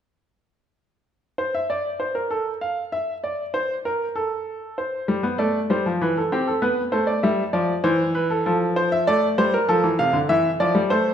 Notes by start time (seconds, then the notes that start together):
1.38 C5
1.55 E5
1.70 D5
2.00 C5
2.15 A#4
2.31 A4
2.61 F5
2.92 E5
3.24 D5
3.54 C5
3.85 A#4
4.16 A4
4.78 C5
5.08 G3
5.23 B3
5.38 A3 D5
5.70 G3 C5
5.86 F3
6.01 E3 B4
6.17 A4
6.32 C4 G4
6.47 A4
6.62 B3 B4
6.92 A3 C5
7.07 D5
7.23 G3 E5
7.53 F3 D5
7.84 E3 C5
8.15 B4
8.30 A4
8.46 F3 A4
8.76 C5
8.92 E5
9.07 A3 D5
9.38 G3 C5
9.54 A#4
9.69 F3 A4
9.84 E3
9.99 C3 F5
10.13 D3
10.29 E3 E5
10.60 F3 D5
10.75 G3
10.90 A3 C5